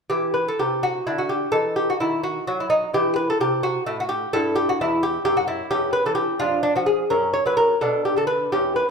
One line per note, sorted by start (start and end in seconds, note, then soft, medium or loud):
0.10 0.50 E3 medium
0.10 1.05 E4 soft
0.10 0.34 G4 medium
0.34 0.47 B4 medium
0.48 0.60 A4 medium
0.59 0.98 C3 medium
0.59 0.83 G4 medium
0.83 1.06 F#4 medium
1.07 1.45 D3 medium
1.07 1.19 E4 medium
1.18 1.31 F#4 medium
1.29 1.53 G4 medium
1.52 1.91 E3 medium
1.52 2.69 D#4 soft
1.52 1.75 A4 loud
1.76 1.89 G4 medium
1.90 2.00 F#4 medium
2.00 2.39 D#3 medium
2.00 2.23 E4 medium
2.23 2.46 F#4 medium
2.47 2.85 F#3 medium
2.47 2.59 F#4 medium
2.60 2.69 E4 medium
2.70 2.93 D#4 medium
2.94 3.31 E3 medium
2.94 3.63 E4 soft
2.94 3.15 G4 loud
3.16 3.28 B4 medium
3.30 3.40 A4 medium
3.40 3.77 C3 medium
3.40 3.63 G4 medium
3.63 3.86 F#4 loud
3.86 4.25 A2 medium
3.86 3.98 E4 medium
4.00 4.11 F#4 medium
4.09 4.32 G4 loud
4.33 4.71 G2 medium
4.33 4.80 E4 medium
4.33 4.56 A4 loud
4.56 4.68 G4 loud
4.69 4.81 F#4 medium
4.81 5.17 E2 medium
4.81 5.03 E4 loud
5.03 5.24 G4 loud
5.25 5.62 F#2 medium
5.25 5.37 G4 loud
5.37 5.47 F#4 medium
5.48 5.70 E4 medium
5.71 5.99 E2 medium
5.71 6.36 C#4 medium
5.71 5.92 G4 loud
5.93 6.05 B4 loud
6.06 6.34 E3 medium
6.06 6.14 A4 medium
6.15 6.38 G4 loud
6.40 6.68 F2 medium
6.40 6.62 D4 medium
6.40 6.62 F4 loud
6.63 6.75 D4 medium
6.76 7.04 F3 medium
6.76 6.86 F#4 medium
6.86 7.09 G#4 medium
7.10 7.39 F#2 medium
7.10 7.78 C#4 medium
7.10 7.33 A#4 loud
7.33 7.46 C#5 loud
7.46 7.74 F#3 medium
7.46 7.56 B4 medium
7.57 7.80 A#4 loud
7.81 8.10 B2 medium
7.81 8.49 D4 medium
7.81 8.04 A4 loud
8.05 8.17 G4 medium
8.16 8.45 D3 medium
8.16 8.27 A4 medium
8.27 8.51 B4 loud
8.52 8.82 E2 medium
8.52 8.90 C#4 soft
8.52 8.75 G4 medium
8.76 8.88 B4 medium